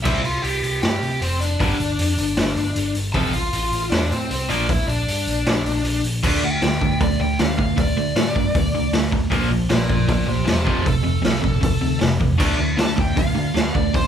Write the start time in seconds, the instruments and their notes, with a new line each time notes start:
0.03 picked electric bass C2, overdriven electric guitar C3 G3 C4, lead electric guitar E4 E5, kick, crash
0.23 lead electric guitar F4 F5, open hi-hat
0.42 picked electric bass C2, lead electric guitar G4 G5, open hi-hat
0.63 picked electric bass C2, open hi-hat
0.82 picked electric bass G2, lead electric guitar G4 G5, snare, open hi-hat
1.02 picked electric bass C3, open hi-hat
1.21 picked electric bass F1, lead electric guitar C4 C5, open hi-hat
1.41 lead electric guitar D4 D5, open hi-hat
1.60 picked electric bass G1, overdriven electric guitar G2 D3 G3, kick, open hi-hat
1.79 picked electric bass G1, open hi-hat
1.99 picked electric bass F2, open hi-hat
2.18 picked electric bass G1, open hi-hat
2.37 picked electric bass G1, snare, open hi-hat
2.57 picked electric bass G1, open hi-hat
2.76 picked electric bass G1, open hi-hat
2.95 picked electric bass G1, open hi-hat
3.13 picked electric bass A1, overdriven electric guitar F2 C3 F3, lead electric guitar A4 A5, kick, open hi-hat
3.33 lead electric guitar F4 F5, open hi-hat
3.53 picked electric bass A1, open hi-hat
3.72 picked electric bass A1, open hi-hat
3.90 picked electric bass E2, lead electric guitar D4 D5, snare, open hi-hat
4.11 picked electric bass A2, lead electric guitar C4 C5, open hi-hat
4.31 picked electric bass C2, lead electric guitar C4 C5, open hi-hat
4.49 picked electric bass A#1, overdriven electric guitar A#2 F3 A#3, lead electric guitar D4 D5, open hi-hat
4.69 picked electric bass A#1, lead electric guitar E4 E5, kick, open hi-hat
4.87 picked electric bass A#1, lead electric guitar D4 D5, open hi-hat
5.08 picked electric bass G2, open hi-hat
5.27 picked electric bass A#1, open hi-hat
5.46 picked electric bass A#1, snare, open hi-hat
5.66 picked electric bass A#1, open hi-hat
5.85 picked electric bass A#1, open hi-hat
6.04 picked electric bass A#1, open hi-hat
6.23 picked electric bass D2, overdriven electric guitar D3 A3 D4, kick, crash
6.42 picked electric bass D2, overdriven electric guitar D3 A3, lead electric guitar G5
6.62 picked electric bass D2, overdriven electric guitar D3 A3, snare, open hi-hat
6.81 picked electric bass D2, overdriven electric guitar D3 A3, kick
7.01 picked electric bass D2, overdriven electric guitar D3 A3, lead electric guitar D5, kick, open hi-hat
7.20 picked electric bass D2, overdriven electric guitar D3 A3, lead electric guitar G5
7.39 picked electric bass D2, overdriven electric guitar D3 A3, lead electric guitar F5, snare, open hi-hat
7.58 picked electric bass D2, overdriven electric guitar D3 A3, lead electric guitar F5, kick
7.76 picked electric bass D2, overdriven electric guitar D3 A3, lead electric guitar D5, kick, open hi-hat
7.96 picked electric bass D2, overdriven electric guitar D3 A3
8.16 picked electric bass A2, overdriven electric guitar D3 A3, snare, open hi-hat
8.35 picked electric bass G2, overdriven electric guitar D3 A3, kick
8.55 picked electric bass D2, overdriven electric guitar D3 A3, kick, open hi-hat
8.73 picked electric bass C2, overdriven electric guitar D3 A3
8.92 picked electric bass D2, overdriven electric guitar D3 A3, snare, open hi-hat
9.12 picked electric bass D2, overdriven electric guitar D3 A3, kick
9.30 picked electric bass A#1, overdriven electric guitar A#2 F3 A#3, kick, open hi-hat
9.50 picked electric bass A#1, overdriven electric guitar A#2 F3
9.69 picked electric bass A#1, overdriven electric guitar A#2 F3, lead electric guitar A#4 D5, snare, open hi-hat
9.89 picked electric bass A#1, overdriven electric guitar A#2 F3, lead electric guitar A#4 D5, kick
10.08 picked electric bass A#1, overdriven electric guitar A#2 F3, lead electric guitar A#4 D5, kick, open hi-hat
10.27 picked electric bass A#1, overdriven electric guitar A#2 F3, lead electric guitar G4 C5
10.46 picked electric bass E1, overdriven electric guitar A#2 F3, lead electric guitar G4 C5, snare, open hi-hat
10.65 picked electric bass F1, overdriven electric guitar F2 C3 F3, lead electric guitar G4 C5, kick
10.84 picked electric bass F1, overdriven electric guitar F2 C3, lead electric guitar A4, kick, open hi-hat
11.03 picked electric bass F1, overdriven electric guitar F2 C3
11.22 picked electric bass C2, overdriven electric guitar F2 C3, snare, open hi-hat
11.42 picked electric bass A#1, overdriven electric guitar F2 C3, kick
11.61 picked electric bass F1, overdriven electric guitar F2 C3, kick, open hi-hat
11.81 picked electric bass D2, overdriven electric guitar F2 C3
11.99 picked electric bass F1, overdriven electric guitar F2 C3, snare, open hi-hat
12.20 picked electric bass E2, overdriven electric guitar F2 C3, kick
12.38 picked electric bass D2, overdriven electric guitar D3 A3 D4, kick, crash
12.58 picked electric bass D2, overdriven electric guitar D3 A3
12.77 picked electric bass D2, overdriven electric guitar D3 A3, lead electric guitar A5, snare, open hi-hat
12.97 picked electric bass D2, overdriven electric guitar D3 A3, lead electric guitar G5, kick
13.17 picked electric bass D2, overdriven electric guitar D3 A3, lead electric guitar F5, kick, open hi-hat
13.34 picked electric bass D2, overdriven electric guitar D3 A3
13.54 picked electric bass D2, overdriven electric guitar D3 A3, snare, open hi-hat
13.74 picked electric bass D2, overdriven electric guitar D3 A3, lead electric guitar D5, kick
13.94 picked electric bass D2, overdriven electric guitar D3 A3, lead electric guitar C5, kick, open hi-hat